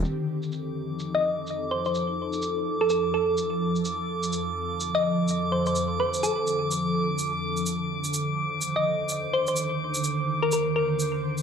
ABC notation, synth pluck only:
X:1
M:4/4
L:1/16
Q:"Swing 16ths" 1/4=126
K:Fmix
V:1 name="Synth pluck"
z8 z e3 z2 c c | z6 z A A z A4 z2 | z8 z e3 z2 c c | z2 c2 A6 z6 |
z8 z e3 z2 c c | z6 z B B z B4 z2 |]